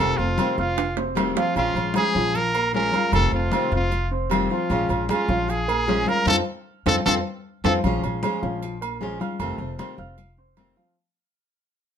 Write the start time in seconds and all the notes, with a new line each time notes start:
Already playing: A4
0.00 F1 C3 D#3 A3 C4 F4 A4 A5
0.18 F1 A3 C4 F4, high conga
0.38 C3 D#3 A3 C4 F4 C5 C6, high conga, low agogo
0.57 F1 A3 C4 F4 F5 F6
0.77 muted nylon-string guitar stroke, high conga, high timbale, low agogo
0.97 C4 C5 C6, high conga, low timbale
1.15 C3 D#3 A3 C4 F4, high conga, low timbale, low agogo
1.35 F3 A3 C4 F4 F5, high conga, low timbale
1.55 A#1 F3 G#3 C#4 F4 F5, high conga, low agogo
1.75 A#1 G#3 C#4 F4, high conga, low agogo
1.94 F3 G#3 C#4 F4 G#4 G#5, high conga, low agogo
2.13 A#1 F3 G#3 C#4 F4 F5
2.34 A#4, muted nylon-string guitar stroke, high conga, low agogo
2.54 A#3 A#4 A#5, high conga, low agogo
2.73 F3 G#3 C#4 F4 G#4 A#4 G#5, high conga
2.91 G#3 C#4 F4 F5, high conga, low agogo
2.95 F6
3.11 F1 C3 D#3 A3 C4 F4 A4 A5, high conga, low agogo
3.32 F1 A3 C4 F4, high conga
3.51 C3 D#3 A3 C4 F4 C5 C6, high conga, low agogo
3.71 F1 A3 C4 F4 F5 F6
3.91 muted nylon-string guitar stroke, high conga, low agogo
4.11 C4 C5 C6, high conga
4.30 C3 D#3 A3 C4 F4, high conga, low timbale, low agogo
4.50 F3 A3 C4 F4 F5, high conga
4.69 A#1 F3 G#3 C#4 F4 F5, high conga, low agogo
4.89 A#1 G#3 C#4 F4, high conga, low agogo
5.08 F3 G#3 C#4 F4 G#4 G#5, high conga, low agogo
5.28 A#1 F3 G#3 C#4 F4 F5
5.48 G#4, muted nylon-string guitar stroke, high conga, low agogo
5.68 A#3 A#4 A#5, high conga, low agogo
5.87 F3 G#3 C#4 F4 G#4 G#5, high conga, low timbale
6.06 G#3 C#4 F4 A#4 F5 F6, high conga, low agogo
6.26 F2 C4 D#4 F4 A4 C5, high conga, high timbale
6.86 F2 C4 D#4 F4 A4 C5, high conga, high timbale
7.06 F2 C4 D#4 F4 A4 C5, high conga, high timbale
7.64 F2 C4 D#4 F4 A4 C5, high conga, high timbale
7.83 A#1 F3 G#3 C#4 F4 F5, high conga, low agogo
8.04 A#1 G#3 C#4 F4, high conga, low agogo
8.22 F3 G#3 C#4 F4 G#4 G#5, high conga, low agogo
8.42 A#1 F3 G#3 C#4 F4 F5
8.63 muted nylon-string guitar stroke, high conga, low agogo
8.81 A#3 A#4 A#5, high conga, low agogo
9.00 F3 G#3 C#4 F4 G#4 G#5, high conga
9.20 G#3 C#4 F4 F5 F6, high conga, low agogo
9.39 F1 C3 D#3 A3 C4 F4 A4 A5, high conga, low agogo
9.58 F1 A3 C4 F4, high conga
9.79 C3 D#3 A3 C4 F4 C5 C6, high conga, low agogo
9.97 F1 A3 F4 F5 F6
10.18 muted nylon-string guitar stroke, high conga, low agogo
10.37 C4 C5 C6, high conga
10.56 C3 D#3 A3 C4 F4, high conga, low timbale, low agogo
10.76 F3 A3 C4 F4 F5